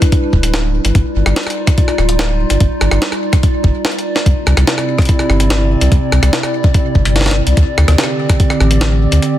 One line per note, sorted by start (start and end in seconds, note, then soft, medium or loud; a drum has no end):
0.00 4.22 G3 medium
0.00 0.92 D4 medium
0.00 0.92 E4 medium
0.00 0.92 B4 medium
0.00 kick loud
0.00 closed hi-hat medium
0.12 kick loud
0.12 closed hi-hat medium
0.33 0.80 D1 medium
0.33 kick medium
0.43 closed hi-hat medium
0.54 snare loud
0.54 closed hi-hat medium
0.85 0.92 G1 medium
0.85 closed hi-hat medium
0.95 1.02 G1 loud
0.95 4.23 D#4 medium
0.95 4.23 F4 medium
0.95 9.38 D5 medium
0.95 kick loud
0.95 closed hi-hat soft
1.16 1.23 G1 medium
1.26 1.33 G1 loud
1.26 cross-stick medium
1.36 snare loud
1.36 closed hi-hat medium
1.43 cross-stick medium
1.43 closed hi-hat soft
1.50 closed hi-hat soft
1.67 kick loud
1.67 cross-stick medium
1.67 closed hi-hat medium
1.78 kick loud
1.78 closed hi-hat soft
1.88 cross-stick soft
1.98 2.45 D1 medium
1.98 cross-stick soft
2.09 closed hi-hat medium
2.19 snare loud
2.19 closed hi-hat medium
2.50 2.57 G1 medium
2.50 closed hi-hat medium
2.60 2.68 G1 loud
2.60 kick loud
2.60 closed hi-hat soft
2.81 2.88 G1 medium
2.81 cross-stick medium
2.91 2.99 G1 loud
2.91 cross-stick medium
3.02 snare loud
3.02 closed hi-hat soft
3.12 cross-stick medium
3.33 kick loud
3.33 cross-stick medium
3.33 closed hi-hat medium
3.43 kick loud
3.43 closed hi-hat soft
3.64 3.71 G1 medium
3.64 kick medium
3.85 snare loud
3.85 closed hi-hat soft
3.92 closed hi-hat soft
3.99 closed hi-hat soft
4.16 snare medium
4.26 4.33 C2 medium
4.26 7.54 C3 medium
4.26 7.54 C4 medium
4.26 7.54 E4 medium
4.26 kick loud
4.26 closed hi-hat soft
4.47 4.54 C2 medium
4.47 cross-stick medium
4.57 4.64 C2 loud
4.57 cross-stick medium
4.57 closed hi-hat medium
4.67 snare loud
4.67 closed hi-hat soft
4.78 cross-stick medium
4.98 kick loud
4.98 cross-stick medium
4.98 closed hi-hat soft
5.02 closed hi-hat soft
5.05 closed hi-hat soft
5.09 kick loud
5.09 closed hi-hat soft
5.19 cross-stick medium
5.30 5.76 G1 medium
5.30 cross-stick soft
5.40 closed hi-hat medium
5.50 snare loud
5.50 closed hi-hat soft
5.81 5.88 C2 medium
5.81 closed hi-hat medium
5.92 5.99 C2 loud
5.92 kick loud
5.92 closed hi-hat soft
6.12 6.19 C2 medium
6.12 cross-stick medium
6.22 6.30 C2 loud
6.22 cross-stick medium
6.22 closed hi-hat medium
6.33 snare loud
6.33 closed hi-hat soft
6.43 cross-stick medium
6.64 kick loud
6.74 kick loud
6.74 closed hi-hat soft
6.95 7.42 G1 medium
6.95 kick medium
7.05 closed hi-hat medium
7.16 snare medium
7.16 closed hi-hat soft
7.21 snare medium
7.26 snare medium
7.31 snare loud
7.47 7.54 C2 medium
7.47 closed hi-hat medium
7.57 7.64 D2 medium
7.57 9.38 D3 medium
7.57 9.38 C4 medium
7.57 9.38 G4 medium
7.57 kick loud
7.57 closed hi-hat soft
7.78 7.85 D2 medium
7.78 cross-stick medium
7.88 7.95 D2 loud
7.88 cross-stick medium
7.88 closed hi-hat medium
7.98 snare loud
7.98 closed hi-hat soft
8.04 cross-stick medium
8.29 kick loud
8.29 cross-stick medium
8.29 closed hi-hat medium
8.40 kick loud
8.40 closed hi-hat soft
8.50 cross-stick medium
8.60 9.07 A1 medium
8.60 cross-stick medium
8.71 closed hi-hat medium
8.81 snare loud
8.81 closed hi-hat medium
9.12 9.19 D2 medium
9.12 closed hi-hat medium
9.22 closed hi-hat medium